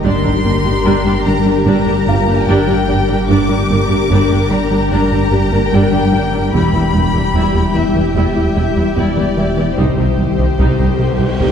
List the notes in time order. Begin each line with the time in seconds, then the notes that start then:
Already playing: G#6
0.03 G1 G2 G3 D4 G4 A#4 C6, taiko
0.24 G2 G3 D4
0.44 G1 G2 G3 A#3 D4
0.64 G2 G3 D4 G4
0.85 G1 G2 G3 D4 A#5
1.06 G2 G3 D4 G4
1.26 G1 G2 G3 D4 A#5
1.46 G2 G3 D4
1.66 G1 G2 G3 D4 A#5
1.87 G2 G3 D4 G4
2.07 G1 G2 G3 D4 F4 G4 F5
2.27 G2 G3 A#3 D4
2.47 G1 G2 G3 D4 G5
2.67 G2 G3 D4
2.88 G1 G2 G3 D4
3.09 G2 G3 D4
3.28 G1 G2 G3 D4 G4 A#4 G5 D6
3.49 G2 G3 D4
3.69 G1 G2 G3 A#3 D4
3.90 G2 G3 D4 G4
4.10 G1 G2 G3 D4
4.30 G2 G3 D4 G4
4.51 G1 G2 G3 D4 A#5
4.71 G2 G3 D4
4.91 G1 G2 G3 D4 A#5
5.12 G2 G3 D4 G4
5.32 G1 G2 G3 D4 G4
5.52 G2 G3 A#3 D4
5.72 G1 G2 G3 D4 G5
5.92 G2 G3 D4
6.12 G1 G2 G3 D4 G5
6.33 G2 G3 D4
6.53 E1 E2 E3 G3 E4 G4 B5, taiko
6.74 E2 E3 G3 B3 E4
6.94 E1 E2 G3 E4
7.14 E2 G3 E4
7.34 E1 E2 E3 G3 E4
7.54 E2 G3 E4
7.74 E1 E2 E3 G3 B3 E4 E5, taiko
7.95 E2 E3 G3 B3 E4
8.15 E1 E2 E3 G3 E4 E5
8.36 E2 G3 E4
8.56 E1 E2 G3 E4
8.76 E2 G3 E4
8.96 E1 E2 E3 G3 E4 D5
9.17 E2 E3 G3 B3 E4
9.37 E1 E2 E3 G3 B3 E4 E5
9.57 E2 E3 G3 B3 E4
9.77 C2 C3 G3 C4 D#4 G4 C5 G5, taiko, cymbal swell
9.97 C2 C3 G3 D#4
10.18 C2 D#3 G3 D#4
10.38 C2 G3 C4 D#4
10.59 C2 C3 G3 D#4, taiko
10.79 C2 G3 C4 D#4
10.99 C2 C3 G3 D#4
11.19 C2 C3 G3 D#4
11.40 C2 C3 G3 D#4, taiko